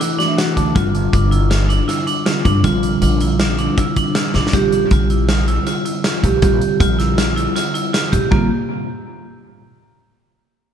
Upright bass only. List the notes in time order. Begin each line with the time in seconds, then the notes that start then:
0.57 D2
0.76 G1
1.13 G1
2.45 G2
2.64 A#1
3.02 A#1
4.35 A#1
4.53 A#1
4.91 A#1
6.23 A#1
6.43 A#1
6.80 A#1
8.13 A#1
8.32 A#1